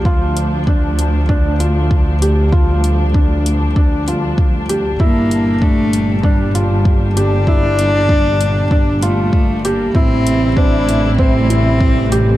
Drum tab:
HH |-x-x-x-x|-x-x-x-x|-x-x-x-x|-x-x-x-x|
BD |o-o-o-o-|o-o-o-o-|o-o-o-o-|o-o-o-o-|

HH |-x-x-x-x|
BD |o-o-o-o-|